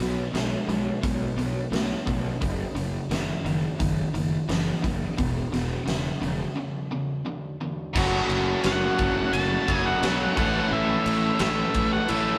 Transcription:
0.00 0.21 B1 medium
0.00 0.30 B2 medium
0.00 0.30 F#3 medium
0.00 snare soft
0.00 open hi-hat soft
0.32 0.55 B1 medium
0.32 0.64 B2 medium
0.32 0.65 G#3 medium
0.32 snare loud
0.32 open hi-hat medium
0.67 0.89 B1 medium
0.67 0.99 B2 medium
0.67 0.99 G#3 medium
0.67 open hi-hat soft
1.02 1.24 B1 medium
1.02 1.34 B2 medium
1.02 1.34 G#3 medium
1.02 kick medium
1.02 open hi-hat medium
1.36 1.58 B1 medium
1.36 1.68 B2 medium
1.36 1.68 G#3 medium
1.36 open hi-hat soft
1.70 1.93 B1 medium
1.70 2.03 B2 medium
1.70 2.03 A3 medium
1.70 snare medium
1.70 open hi-hat medium
2.05 2.28 B1 medium
2.05 2.37 B2 medium
2.05 2.38 A3 medium
2.05 kick medium
2.05 open hi-hat soft
2.40 2.63 F#1 medium
2.40 2.72 F#2 medium
2.40 2.72 C#3 medium
2.40 kick medium
2.40 open hi-hat medium
2.75 2.97 F#1 medium
2.75 3.07 F#2 medium
2.75 3.07 C#3 medium
2.75 open hi-hat soft
3.09 3.31 F#1 medium
3.09 3.41 F#2 medium
3.09 3.42 D#3 medium
3.09 snare loud
3.09 open hi-hat medium
3.44 3.66 F#1 medium
3.44 3.76 F#2 medium
3.44 3.77 D#3 medium
3.44 open hi-hat soft
3.78 4.01 F#1 medium
3.78 4.10 F#2 medium
3.78 4.11 D#3 medium
3.78 kick medium
3.78 open hi-hat medium
4.13 4.35 F#1 medium
4.13 4.45 F#2 medium
4.13 4.46 D#3 medium
4.13 open hi-hat soft
4.48 4.70 F#1 medium
4.48 4.80 F#2 medium
4.48 4.80 E3 medium
4.48 snare medium
4.48 open hi-hat medium
4.83 5.05 F#1 medium
4.83 5.15 F#2 medium
4.83 5.15 E3 medium
4.83 kick medium
4.83 open hi-hat soft
5.17 5.40 E1 medium
5.17 5.49 E2 medium
5.17 5.49 B2 medium
5.17 kick medium
5.17 open hi-hat medium
5.52 5.74 E1 medium
5.52 5.84 E2 medium
5.52 5.84 B2 medium
5.52 snare soft
5.52 open hi-hat soft
5.86 6.09 E1 medium
5.86 6.18 E2 medium
5.86 6.18 C#3 medium
5.86 snare loud
5.86 open hi-hat medium
6.22 6.43 E1 medium
6.22 6.53 E2 medium
6.22 6.54 C#3 medium
6.22 open hi-hat soft
6.55 6.88 E2 medium
6.55 6.87 C#3 medium
6.91 7.22 E2 medium
6.91 7.23 C#3 medium
7.25 7.57 E2 medium
7.25 7.57 D3 medium
7.60 7.92 E2 medium
7.60 7.92 D3 medium
7.93 8.19 F#1 loud
7.93 9.66 F#2 medium
7.93 9.66 C#3 medium
7.93 9.65 F#3 medium
7.93 8.96 F#3 medium
7.93 9.69 A3 medium
7.93 10.35 A3 medium
7.93 10.34 C#4 medium
7.93 9.00 C#4 loud
7.93 9.68 C#4 loud
7.93 10.34 F#4 medium
7.93 8.97 F#4 loud
7.93 9.65 F#4 medium
7.93 8.97 A4 loud
7.93 10.35 C#5 medium
7.93 kick loud
7.93 crash loud
8.29 8.53 F#1 medium
8.29 ride medium
8.64 8.88 F#1 medium
8.64 9.37 F#5 loud
8.64 snare loud
8.64 ride medium
8.98 9.23 F#1 medium
8.98 10.00 F#3 medium
8.98 10.03 C#4 medium
8.98 10.01 F#4 medium
8.98 10.04 A4 medium
8.98 kick medium
8.98 ride medium
9.33 9.57 F#1 medium
9.33 9.73 A5 loud
9.33 ride loud
9.66 9.92 F#1 medium
9.66 10.01 F#2 medium
9.66 10.01 C#3 medium
9.66 10.00 F#3 medium
9.66 10.02 A3 medium
9.66 10.03 C#4 medium
9.66 10.00 F#4 medium
9.66 kick medium
9.66 ride medium
9.73 9.87 G#5 loud
9.86 10.37 F#5 medium
10.01 10.26 B1 loud
10.01 10.35 F#2 medium
10.01 10.35 C#3 medium
10.01 10.34 F#3 medium
10.01 10.35 F#3 medium
10.01 10.37 A3 medium
10.01 10.37 C#4 medium
10.01 10.38 C#4 medium
10.01 10.36 F#4 medium
10.01 10.39 A4 medium
10.01 snare loud
10.01 ride medium
10.35 10.61 A1 medium
10.35 12.07 A2 medium
10.35 12.07 E3 medium
10.35 11.40 A3 medium
10.35 12.38 A3 medium
10.35 12.10 A3 medium
10.35 11.41 C#4 medium
10.35 12.38 C#4 medium
10.35 12.11 C#4 loud
10.35 12.38 E4 medium
10.35 11.39 E4 medium
10.35 12.11 A4 loud
10.35 11.43 A4 loud
10.35 12.38 C#5 medium
10.35 10.72 F#5 medium
10.35 kick loud
10.35 crash medium
10.71 10.95 A1 loud
10.71 11.40 E5 loud
11.06 11.29 A1 medium
11.06 ride medium
11.39 11.64 A1 medium
11.39 12.38 A3 medium
11.39 12.38 C#4 medium
11.39 12.38 E4 medium
11.39 12.38 A4 medium
11.39 11.93 E5 medium
11.39 snare loud
11.39 ride loud
11.74 11.99 A1 medium
11.74 kick medium
11.74 ride medium
11.93 12.09 F#5 medium
12.08 12.33 A1 medium
12.08 12.38 A2 medium
12.08 12.38 E3 medium
12.08 12.38 A3 medium
12.08 12.38 C#4 medium
12.08 12.38 A4 medium
12.08 12.38 E5 medium
12.08 ride loud

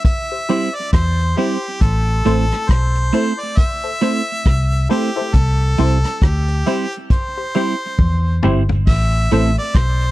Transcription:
0.05 0.77 E5 loud
0.05 kick loud
0.05 closed hi-hat medium
0.32 0.39 G4 soft
0.32 0.39 C5 soft
0.49 0.68 G3 medium
0.49 0.68 C4 medium
0.49 0.68 E4 medium
0.49 0.69 G4 medium
0.49 0.69 C5 loud
0.49 closed hi-hat medium
0.75 0.93 D5 medium
0.93 1.34 E2 medium
0.93 1.39 C5 medium
0.93 kick loud
0.93 cross-stick loud
0.93 closed hi-hat medium
1.19 closed hi-hat medium
1.37 1.56 G3 medium
1.37 1.56 C4 medium
1.37 1.57 E4 medium
1.37 1.83 G4 medium
1.37 1.57 G4 medium
1.37 1.57 C5 loud
1.37 open hi-hat medium
1.63 closed hi-hat soft
1.81 2.22 A1 loud
1.81 2.71 A4 medium
1.81 kick loud
1.81 closed hi-hat medium
2.25 2.50 A1 loud
2.25 2.44 A3 medium
2.25 2.44 C4 medium
2.25 2.45 E4 medium
2.25 2.45 A4 medium
2.25 2.45 C5 loud
2.25 closed hi-hat medium
2.51 cross-stick medium
2.51 closed hi-hat medium
2.69 3.10 B1 medium
2.69 3.42 C5 medium
2.69 kick loud
2.69 cross-stick loud
2.69 closed hi-hat medium
2.95 closed hi-hat medium
3.13 3.32 A3 medium
3.13 3.32 C4 medium
3.13 3.33 E4 medium
3.13 3.32 E4 medium
3.13 3.33 A4 medium
3.13 3.33 C5 medium
3.13 closed hi-hat medium
3.40 3.60 D5 medium
3.40 closed hi-hat soft
3.57 4.90 E5 loud
3.57 kick loud
3.57 closed hi-hat medium
3.84 3.91 A4 soft
3.84 3.91 C5 soft
4.01 4.20 A3 medium
4.01 4.21 C4 medium
4.01 4.21 E4 medium
4.01 4.21 A4 medium
4.01 4.21 C5 loud
4.01 closed hi-hat medium
4.45 4.86 C2 medium
4.45 kick loud
4.45 cross-stick loud
4.45 closed hi-hat medium
4.72 closed hi-hat medium
4.89 5.09 A3 medium
4.89 5.09 C4 medium
4.89 5.09 E4 medium
4.89 5.36 G4 medium
4.89 5.09 A4 medium
4.89 5.10 C5 loud
4.89 open hi-hat medium
5.16 5.29 E4 medium
5.16 5.30 A4 medium
5.16 5.30 C5 medium
5.16 closed hi-hat soft
5.33 5.74 C2 loud
5.33 6.25 A4 medium
5.33 kick loud
5.33 closed hi-hat medium
5.78 6.03 C2 medium
5.78 5.97 G3 medium
5.78 5.97 C4 medium
5.78 5.98 E4 medium
5.78 5.97 E4 medium
5.78 5.98 G4 medium
5.78 5.98 C5 medium
5.78 closed hi-hat medium
6.04 cross-stick medium
6.04 closed hi-hat medium
6.22 6.63 D2 medium
6.22 6.95 G4 medium
6.22 kick loud
6.22 cross-stick loud
6.22 closed hi-hat medium
6.48 closed hi-hat medium
6.66 6.85 G3 medium
6.66 6.85 C4 medium
6.66 6.86 E4 medium
6.66 6.86 G4 medium
6.66 6.86 C5 loud
6.66 closed hi-hat medium
6.92 closed hi-hat medium
7.10 8.39 C5 medium
7.10 kick loud
7.10 closed hi-hat medium
7.38 7.44 G4 soft
7.38 7.44 C5 soft
7.55 7.73 G3 medium
7.55 7.74 C4 medium
7.55 7.74 E4 medium
7.55 7.74 G4 medium
7.55 7.75 C5 loud
7.55 closed hi-hat medium
7.99 8.39 E2 medium
7.99 kick loud
7.99 high tom medium
8.43 8.84 G1 medium
8.43 8.62 G3 medium
8.43 8.62 C4 medium
8.43 8.62 E4 medium
8.43 8.62 E4 loud
8.43 8.62 G4 medium
8.43 8.63 C5 loud
8.43 mid tom medium
8.69 floor tom medium
8.87 9.27 A1 loud
8.87 9.53 E5 loud
8.87 kick loud
8.87 crash medium
9.31 9.56 A1 loud
9.31 9.50 A3 medium
9.31 9.50 C4 medium
9.31 9.51 E4 medium
9.31 9.51 A4 medium
9.31 9.51 C5 medium
9.31 closed hi-hat medium
9.57 9.78 D5 medium
9.57 closed hi-hat medium
9.75 10.11 B1 medium
9.75 10.11 C5 medium
9.75 kick loud
9.75 cross-stick loud
9.75 closed hi-hat medium
10.01 closed hi-hat medium

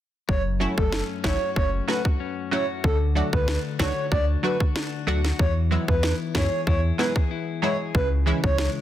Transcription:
0.29 0.67 F#1 loud
0.29 2.84 F#2 medium
0.29 0.42 C#5 loud
0.29 kick loud
0.60 0.74 F#3 medium
0.60 0.74 A3 medium
0.60 3.15 A3 medium
0.60 0.74 C#4 medium
0.60 0.75 E4 medium
0.77 1.02 F#1 medium
0.77 1.04 A4 medium
0.77 kick loud
0.92 1.55 C#4 medium
0.92 snare loud
1.24 1.37 G#1 medium
1.24 1.38 F#3 medium
1.24 1.38 A3 medium
1.24 1.38 C#4 medium
1.24 1.38 E4 medium
1.24 1.88 F#4 medium
1.24 1.50 C#5 medium
1.24 kick loud
1.24 snare loud
1.56 1.81 F#1 loud
1.56 2.19 C#4 medium
1.56 1.70 C#5 medium
1.56 kick loud
1.88 2.01 F#3 medium
1.88 2.02 A3 medium
1.88 2.02 C#4 medium
1.88 2.52 F#4 medium
1.88 2.02 F#4 medium
1.88 2.02 B4 medium
1.88 snare medium
2.05 kick medium
2.20 2.91 C#4 medium
2.51 2.65 F#3 medium
2.51 2.66 A3 medium
2.51 2.66 C#4 medium
2.51 2.66 E4 medium
2.51 3.79 F#4 medium
2.51 2.66 C#5 medium
2.84 3.22 D2 loud
2.84 5.39 D3 medium
2.84 2.98 A4 loud
2.84 kick loud
3.15 3.29 F#3 medium
3.15 3.29 A3 medium
3.15 5.46 A3 medium
3.15 3.30 D4 medium
3.15 3.30 F#4 medium
3.33 3.58 D2 loud
3.33 3.59 B4 medium
3.33 kick medium
3.48 4.10 D4 medium
3.48 snare loud
3.79 3.93 C#2 medium
3.79 3.93 F#3 medium
3.79 3.93 A3 medium
3.79 3.93 D4 medium
3.79 4.43 F#4 medium
3.79 3.94 F#4 medium
3.79 4.06 C#5 medium
3.79 kick loud
3.79 snare loud
4.12 4.36 D2 loud
4.12 4.74 D4 medium
4.12 4.25 D5 medium
4.12 kick loud
4.43 4.57 F#3 medium
4.43 4.57 A3 medium
4.43 4.57 D4 medium
4.43 5.07 F#4 medium
4.43 4.58 F#4 medium
4.43 4.57 B4 medium
4.60 kick medium
4.76 5.46 D4 medium
4.76 snare loud
5.07 5.32 D2 medium
5.07 5.21 F#3 medium
5.07 5.21 A3 medium
5.07 5.21 D4 medium
5.07 6.06 F#4 medium
5.07 5.21 F#4 medium
5.25 snare medium
5.39 5.77 E2 loud
5.39 7.94 E3 medium
5.39 5.53 C#5 loud
5.39 kick loud
5.71 5.84 F#3 medium
5.71 5.85 G#3 medium
5.71 8.01 B3 medium
5.71 5.85 B3 medium
5.71 5.85 E4 medium
5.88 6.13 E2 loud
5.88 6.14 B4 medium
5.88 kick medium
6.03 6.67 E4 medium
6.03 snare loud
6.34 6.48 F#2 medium
6.34 6.48 F#3 medium
6.34 6.49 G#3 medium
6.34 6.49 B3 medium
6.34 6.49 E4 medium
6.34 6.99 G#4 medium
6.34 6.61 C#5 medium
6.34 kick medium
6.34 snare loud
6.67 6.92 E2 loud
6.67 7.30 E4 medium
6.67 6.81 C#5 loud
6.67 kick loud
6.98 7.12 F#3 medium
6.98 7.12 G#3 medium
6.98 7.13 B3 medium
6.98 7.13 E4 medium
6.98 7.62 G#4 medium
6.98 7.13 B4 medium
6.98 snare medium
7.16 kick medium
7.31 8.81 E4 medium
7.62 7.76 F#3 medium
7.62 7.76 G#3 medium
7.62 7.76 B3 medium
7.62 7.77 E4 medium
7.62 8.81 G#4 medium
7.62 7.77 C#5 medium
7.95 8.33 C#2 loud
7.95 8.81 C#3 medium
7.95 8.08 B4 loud
7.95 kick loud
8.26 8.40 E3 medium
8.26 8.81 E3 medium
8.26 8.40 G#3 medium
8.26 8.40 C#4 medium
8.26 8.41 E4 medium
8.44 8.68 C#2 loud
8.44 8.70 C#5 medium
8.44 kick loud
8.58 8.81 G#3 medium
8.58 snare loud

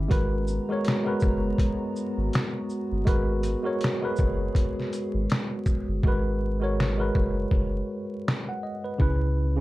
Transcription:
0.00 0.12 D#3 medium
0.00 0.12 C#4 medium
0.00 0.12 G4 medium
0.00 0.13 E5 loud
0.08 0.59 G#1 medium
0.08 0.60 G#3 medium
0.08 5.99 G#3 medium
0.08 5.99 B3 medium
0.08 0.60 F#4 medium
0.08 5.99 F#4 medium
0.08 0.61 A#4 medium
0.08 0.61 B4 loud
0.08 3.04 A#5 medium
0.08 kick loud
0.08 closed hi-hat medium
0.47 shaker medium
0.69 1.00 G#3 medium
0.69 1.01 F#4 medium
0.69 1.01 A#4 medium
0.69 1.02 C#5 medium
0.85 finger snap medium
0.85 snare medium
0.85 closed hi-hat medium
1.05 2.32 G#3 medium
1.05 2.32 F#4 medium
1.05 2.33 A#4 medium
1.05 2.33 B4 medium
1.20 1.53 F#1 medium
1.20 kick medium
1.20 shaker soft
1.58 kick medium
1.58 closed hi-hat medium
1.96 shaker soft
2.17 2.30 G#1 medium
2.33 finger snap medium
2.33 snare loud
2.33 closed hi-hat medium
2.69 shaker soft
2.92 3.04 G1 medium
3.05 3.55 G#1 loud
3.05 3.56 G#3 medium
3.05 3.57 F#4 medium
3.05 6.00 G#4 medium
3.05 3.57 A#4 medium
3.05 3.58 B4 loud
3.05 kick loud
3.05 closed hi-hat medium
3.43 closed hi-hat medium
3.43 shaker medium
3.63 3.96 G#3 medium
3.63 3.96 F#4 medium
3.63 3.97 A#4 medium
3.63 3.97 C#5 medium
3.81 finger snap medium
3.81 snare medium
3.81 closed hi-hat medium
4.01 5.28 G#3 medium
4.01 5.29 F#4 medium
4.01 5.29 A#4 medium
4.01 5.30 B4 loud
4.16 4.49 F#1 medium
4.16 kick medium
4.16 shaker medium
4.55 kick medium
4.55 closed hi-hat medium
4.80 snare soft
4.93 closed hi-hat soft
4.93 shaker soft
5.14 5.27 G#1 medium
5.30 finger snap loud
5.30 snare loud
5.30 closed hi-hat medium
5.66 kick medium
5.66 shaker soft
5.88 6.01 G1 medium
6.03 7.10 G#1 medium
6.03 6.54 G#3 medium
6.03 6.54 F#4 medium
6.03 6.55 A#4 medium
6.03 kick loud
6.08 6.56 B4 loud
6.60 6.92 G#3 medium
6.60 6.93 F#4 medium
6.60 6.93 A#4 medium
6.60 6.94 C#5 medium
6.80 finger snap medium
6.80 snare medium
6.98 8.25 G#3 medium
6.98 8.25 F#4 medium
6.98 7.89 A#4 medium
6.98 7.90 B4 medium
7.15 7.45 F#1 medium
7.15 kick medium
7.51 7.82 F#1 medium
7.51 kick medium
8.28 finger snap medium
8.28 snare loud
8.49 8.63 F#5 medium
8.63 8.83 D#5 medium
8.84 9.00 B4 medium
8.98 9.61 C#2 medium
8.98 9.49 C#3 medium
8.98 9.49 C#4 medium
8.98 9.50 E4 medium
8.98 9.51 B4 medium
8.98 kick loud
9.57 9.61 C#3 medium

